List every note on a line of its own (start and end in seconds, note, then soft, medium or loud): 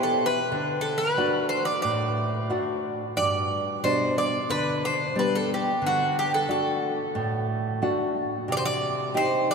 0.00 0.37 B3 medium
0.00 0.37 E4 soft
0.00 0.37 G4 medium
0.00 0.25 A4 medium
0.26 0.78 B4 medium
0.52 1.15 D3 medium
0.81 0.97 A4 medium
0.98 1.45 B4 medium
1.17 1.70 A3 medium
1.17 1.70 D4 soft
1.17 1.71 F#4 medium
1.49 1.65 C5 medium
1.65 1.81 D5 medium
1.82 2.48 A2 medium
1.82 2.78 D5 medium
2.50 3.03 A3 soft
2.50 3.03 D4 soft
2.50 3.03 F#4 medium
3.17 3.81 G2 medium
3.17 3.79 D5 loud
3.84 4.37 B2 soft
3.84 4.36 G3 soft
3.84 4.37 D4 medium
3.84 4.18 C5 medium
4.18 4.48 D5 medium
4.49 5.14 D3 medium
4.49 4.84 B4 loud
4.85 5.18 C5 medium
5.15 5.69 G3 soft
5.15 5.69 B3 soft
5.15 5.69 D4 medium
5.15 5.35 B4 medium
5.35 5.50 A4 medium
5.54 5.86 G4 medium
5.82 6.47 D3 medium
5.86 6.16 F#4 loud
6.19 6.33 G4 medium
6.34 6.49 A4 medium
6.48 7.01 A3 medium
6.48 7.02 D4 soft
6.48 7.02 F#4 medium
6.48 7.46 A4 medium
7.15 7.80 A2 medium
7.82 8.35 A3 medium
7.82 8.35 D4 soft
7.82 8.36 F#4 medium
8.48 9.13 C3 medium
8.52 8.57 D5 loud
8.57 8.63 C5 loud
8.65 9.17 D5 loud
9.14 9.55 C4 medium
9.14 9.55 D#4 soft
9.14 9.55 G4 medium
9.14 9.47 C5 loud
9.51 9.55 D5 loud